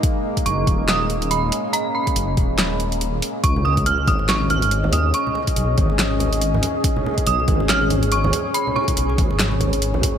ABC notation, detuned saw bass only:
X:1
M:4/4
L:1/8
Q:"Swing 16ths" 1/4=141
K:C#mix
V:1 name="Detuned saw bass" clef=bass
z2 F,,, D,,,4 z | z2 F,,, D,,,4 z | C,,3 G,,,4 D,, | z2 B,,, G,,,4 z |
z2 B,,, G,,,4 z | z2 B,,, G,,,4 z |]